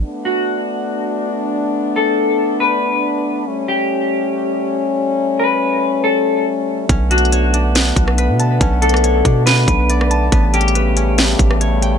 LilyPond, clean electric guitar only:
\new Staff \with { instrumentName = "Clean electric guitar" } { \time 4/4 \key b \minor \tempo 4 = 140 r8 fis'2~ fis'8 r4 | r8 a'4. b'2 | r8 g'2~ g'8 r4 | r8 b'4. a'4 r4 |
r8 fis'2~ fis'8 r4 | r8 a'4. b'2 | r8 g'2~ g'8 r4 | }